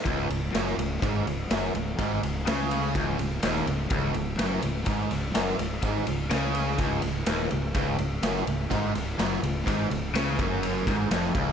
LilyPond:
<<
  \new Staff \with { instrumentName = "Overdriven electric guitar" } { \clef bass \time 4/4 \key des \major \tempo 4 = 125 des,8 des,8 ges,8 des,8 aes,8 des,8 ges,8 des,8 | aes,8 des,8 des4 des,8 des,8 ees,8 des,8 | des,8 des,8 ges,8 des,8 aes,8 des,8 ges,8 des,8 | aes,8 des,8 des4 des,8 des,8 ees,8 des,8 |
des,8 des,8 ges,8 des,8 aes,8 des,8 ges,8 des,8 | aes,8 des,8 des8 ges,4 aes,8 f,8 des,8 | }
  \new Staff \with { instrumentName = "Overdriven electric guitar" } { \clef bass \time 4/4 \key des \major des,8 des,8 ges,8 des,8 aes,8 des,8 ges,8 des,8 | aes,8 des,8 des4 des,8 des,8 ees,8 des,8 | des,8 des,8 ges,8 des,8 aes,8 des,8 ges,8 des,8 | aes,8 des,8 des4 des,8 des,8 ees,8 des,8 |
des,8 des,8 ges,8 des,8 aes,8 des,8 ges,8 des,8 | aes,8 des,8 des8 ges,4 aes,8 f,8 des,8 | }
  \new Staff \with { instrumentName = "Fingered electric bass" } { \clef bass \time 4/4 \key des \major des,,8 des,,8 ges,,8 des,,8 aes,,8 des,,8 ges,,8 des,,8 | aes,,8 des,,8 des,4 des,,8 des,,8 ees,,8 des,,8 | des,,8 des,,8 ges,,8 des,,8 aes,,8 des,,8 ges,,8 des,,8 | aes,,8 des,,8 des,4 des,,8 des,,8 ees,,8 des,,8 |
des,,8 des,,8 ges,,8 des,,8 aes,,8 des,,8 ges,,8 des,,8 | aes,,8 des,,8 des,8 ges,,4 aes,,8 f,,8 des,,8 | }
  \new DrumStaff \with { instrumentName = "Drums" } \drummode { \time 4/4 <bd cymr>8 cymr8 <cymr sn>8 cymr8 <bd cymr>8 cymr8 <cymr sn>8 cymr8 | <bd cymr>8 cymr8 <cymr sn>8 cymr8 <bd cymr>8 <cymr sn>8 <cymr sn>16 sn16 cymr8 | <bd cymr>8 cymr8 <cymr sn>8 cymr8 <bd cymr>8 <cymr sn>8 <cymr sn>16 sn16 cymr8 | <bd cymr>8 cymr8 <cymr sn>8 cymr8 <bd cymr>8 <cymr sn>8 <cymr sn>16 sn16 cymr8 |
<bd cymr>8 cymr8 <cymr sn>8 cymr8 <bd cymr>8 <cymr sn>8 <cymr sn>16 sn16 cymr8 | <bd cymr>8 cymr8 <cymr sn>8 <bd cymr>8 cymr8 <bd cymr sn>8 <cymr sn>8 <bd cymr>8 | }
>>